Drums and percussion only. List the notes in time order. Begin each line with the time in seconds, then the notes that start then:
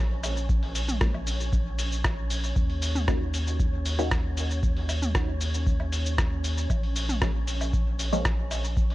0.23 open hi-hat, cabasa, low woodblock
0.37 cabasa
0.49 kick, cabasa
0.63 open hi-hat
0.75 open hi-hat, cabasa
0.89 mid tom, cabasa
1.01 kick, cross-stick, cabasa
1.14 low woodblock
1.27 open hi-hat, cabasa
1.40 cabasa
1.53 kick, cabasa
1.79 open hi-hat, cabasa
1.92 cabasa
2.04 kick, cross-stick, cabasa, low woodblock
2.30 open hi-hat, cabasa
2.44 cabasa
2.56 kick, cabasa
2.70 open hi-hat
2.82 open hi-hat, cabasa
2.95 mid tom, cabasa
3.08 kick, cross-stick, cabasa, low woodblock
3.34 open hi-hat, cabasa
3.47 cabasa
3.60 kick, cabasa
3.86 open hi-hat, cabasa
3.99 cabasa, low woodblock
4.11 kick, cross-stick, cabasa
4.37 open hi-hat, cabasa
4.51 cabasa
4.63 kick, cabasa
4.77 open hi-hat
4.89 open hi-hat, cabasa, low woodblock
5.02 mid tom, cabasa
5.15 kick, cross-stick, cabasa
5.41 open hi-hat, cabasa
5.54 cabasa
5.67 kick, cabasa
5.80 low woodblock
5.92 open hi-hat, cabasa
6.06 cabasa
6.18 kick, cross-stick, cabasa
6.44 open hi-hat, cabasa
6.58 cabasa
6.70 kick, cabasa, low woodblock
6.83 open hi-hat
6.96 open hi-hat, cabasa
7.09 mid tom, cabasa
7.22 kick, cross-stick, cabasa
7.47 open hi-hat, cabasa
7.61 cabasa, low woodblock
7.73 kick, cabasa
7.99 open hi-hat, cabasa
8.13 cabasa
8.25 kick, cross-stick, cabasa
8.51 open hi-hat, cabasa, low woodblock
8.64 cabasa
8.77 kick, cabasa
8.90 open hi-hat